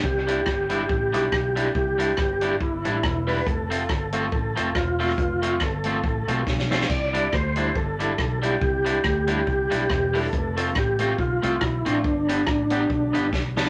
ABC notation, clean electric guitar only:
X:1
M:4/4
L:1/8
Q:"Swing" 1/4=140
K:C
V:1 name="Clean electric guitar"
z [G,DE] z [G,DE] z [G,DE] z [G,DE] | z [G,DE] z [G,DE] z [G,DE] z [G,DE] | z [A,CF] z [A,CF] z [A,CF] z [A,CF] | z [A,CF] z [A,CF] z [A,CF] z [A,CF] |
z [G,DE] z [G,DE] z [G,DE] z [G,DE] | z [G,DE] z [G,DE] z [G,DE] z [G,DE] | z [A,CF] z [A,CF] z [A,CF] z [A,CF] | z [B,DG] z [B,DG] z [B,DG] z [B,DG] |]